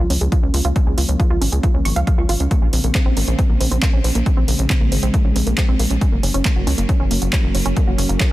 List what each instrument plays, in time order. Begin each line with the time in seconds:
Already playing: analog synth pad F3 A#3 C#4
0.10 analog synth bass C#2, synth pluck C#4, open hi-hat
0.21 analog synth bass C#2, synth pluck G#4, closed hi-hat
0.32 synth pluck F4, kick, closed hi-hat
0.43 analog synth bass C#2, synth pluck C#4
0.54 analog synth bass C#2, synth pluck F4, open hi-hat
0.65 analog synth bass C#2, synth pluck F4, closed hi-hat
0.76 synth pluck C#4, kick, closed hi-hat
0.87 analog synth bass C#2, synth pluck G#4
0.98 analog synth bass C#2, synth pluck F4, open hi-hat
1.09 analog synth bass C#2, synth pluck C#4, closed hi-hat
1.20 synth pluck F4, kick, closed hi-hat
1.30 analog synth bass C#2, synth pluck F4
1.41 analog synth bass G#1, synth pluck C#4, open hi-hat
1.52 analog synth bass C#2, synth pluck G#4, closed hi-hat
1.63 synth pluck F4, kick, closed hi-hat
1.74 analog synth bass C#2, synth pluck C#4
1.85 analog synth bass G#1, synth pluck C#6, open hi-hat
1.96 analog synth bass C#2, synth pluck F5, closed hi-hat
2.07 synth pluck F5, kick, closed hi-hat
2.18 analog synth bass C#2, synth pluck F4
2.29 analog synth bass G#1, synth pluck F4, open hi-hat
2.40 analog synth bass C#2, synth pluck C#4, closed hi-hat
2.51 analog synth pad C#3 A#3 C4, synth pluck A#3, kick, closed hi-hat
2.62 analog synth bass A#1, synth pluck C#4
2.73 analog synth bass A#1, synth pluck C4, open hi-hat
2.84 analog synth bass A#1, synth pluck A#3, closed hi-hat
2.95 synth pluck C4, kick, clap, closed hi-hat
3.06 analog synth bass A#1, synth pluck C4
3.17 analog synth bass G#1, synth pluck A#3, open hi-hat
3.28 analog synth bass A#1, synth pluck C#4, closed hi-hat
3.39 synth pluck C4, kick, closed hi-hat
3.50 analog synth bass A#1, synth pluck A#3
3.60 analog synth bass A#1, synth pluck C4, open hi-hat
3.71 analog synth bass A#1, synth pluck C4, closed hi-hat
3.82 synth pluck A#3, kick, clap, closed hi-hat
3.93 analog synth bass A#1, synth pluck C#4
4.04 analog synth bass A#1, synth pluck C4, open hi-hat
4.15 analog synth bass A#1, synth pluck A#3, closed hi-hat
4.26 analog synth pad G#3, synth pluck C4, kick, closed hi-hat
4.37 analog synth bass A#1, synth pluck C4
4.48 analog synth bass A#1, synth pluck A#3, open hi-hat
4.59 analog synth bass A#1, synth pluck C#4, closed hi-hat
4.70 synth pluck C4, kick, clap, closed hi-hat
4.81 analog synth bass A#1, synth pluck A#3
4.92 analog synth bass G#1, synth pluck C4, open hi-hat
5.03 analog synth bass A#1, synth pluck C4, closed hi-hat
5.14 synth pluck A#3, kick, closed hi-hat
5.25 analog synth bass A#1, synth pluck C#4
5.36 analog synth bass A#1, synth pluck C4, open hi-hat
5.47 analog synth bass A#1, synth pluck A#3, closed hi-hat
5.58 synth pluck C4, kick, clap, closed hi-hat
5.68 analog synth bass A#1, synth pluck C4
5.79 analog synth bass A#1, synth pluck A#3, open hi-hat
5.90 analog synth bass A#1, synth pluck C#4, closed hi-hat
6.01 analog synth pad F#3 A#3 C#4, synth pluck C#4, kick, closed hi-hat
6.12 analog synth bass F#1, synth pluck A#3
6.23 analog synth bass F#1, synth pluck C#4, open hi-hat
6.34 analog synth bass F#1, synth pluck C#4, closed hi-hat
6.45 synth pluck A#3, kick, clap, closed hi-hat
6.56 analog synth bass F#1, synth pluck F#4
6.67 analog synth bass C#2, synth pluck C#4, open hi-hat
6.78 analog synth bass F#1, synth pluck A#3, closed hi-hat
6.89 synth pluck C#4, kick, closed hi-hat
7.00 analog synth bass F#1, synth pluck C#4
7.11 analog synth bass F#1, synth pluck A#3, open hi-hat
7.22 analog synth bass F#1, synth pluck F#4, closed hi-hat
7.33 synth pluck C#4, kick, clap, closed hi-hat
7.44 analog synth bass F#1, synth pluck A#3
7.55 analog synth bass F#1, synth pluck C#4, open hi-hat
7.66 analog synth bass F#1, synth pluck C#4, closed hi-hat
7.77 synth pluck A#3, kick, closed hi-hat
7.87 analog synth bass F#1, synth pluck F#4
7.98 analog synth bass F#1, synth pluck C#4, open hi-hat
8.09 analog synth bass F#1, synth pluck A#3, closed hi-hat
8.20 synth pluck C#4, kick, clap, closed hi-hat